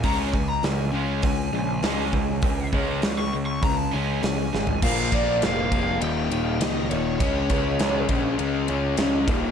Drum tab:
CC |----------------|----------------|x---------------|----------------|
RD |----------------|----------------|--x-x-x-x-x-x-x-|x-x-x-x-x-x-x-x-|
HH |o---o---o---o---|o---o---o---o---|----------------|----------------|
SD |----o-------o---|----o-------o-o-|----o-------o---|----o-------o---|
FT |----------------|---------------o|----------------|----------------|
BD |o-o-----o-----o-|o-o-----o-------|o-o---o---------|o-o---o-------o-|